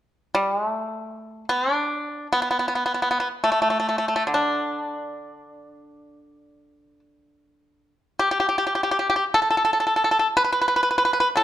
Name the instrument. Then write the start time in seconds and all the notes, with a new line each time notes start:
pipa
0.35 G3
0.55 G#3
0.68 A3
1.49 B3
1.73 D4
2.33 B3
2.42 B3
2.51 B3
2.59 B3
2.68 B3
2.75 B3
2.86 B3
2.94 B3
3.02 B3
3.11 B3
3.20 B3
3.44 A3
3.52 A3
3.62 A3
3.70 A3
3.80 A3
3.89 A3
3.98 A3
4.08 A3
4.16 A3
4.27 D3
4.34 D4
8.19 G4
8.31 G4
8.40 G4
8.49 G4
8.58 G4
8.67 G4
8.75 G4
8.83 G4
8.91 G4
8.99 G4
9.10 G4
9.16 G4
9.34 A4
9.42 A4
9.50 A4
9.57 A4
9.65 A4
9.73 A4
9.80 A4
9.87 A4
9.96 A4
10.04 A4
10.11 A4
10.19 A4
10.37 B4
10.44 B4
10.52 B4
10.62 B4
10.68 B4
10.76 B4
10.83 B4
10.91 B4
10.98 B4
11.05 B4
11.13 B4
11.20 B4
11.36 A2 A4